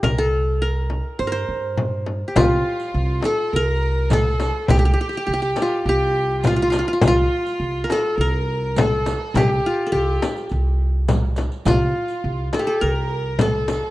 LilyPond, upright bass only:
\new Staff \with { instrumentName = "Upright bass" } { \clef bass \time 4/4 \tempo 4 = 103 c,2 g,8 g,4. | c,8 r8 c,8 r8 c,2 | c,8 r8 c,8 r8 c,2 | c,8 r8 c,8 r8 c,2 |
c,8 r8 c,8 r8 c,2 | c,8 r8 c,8 r8 c,2 | }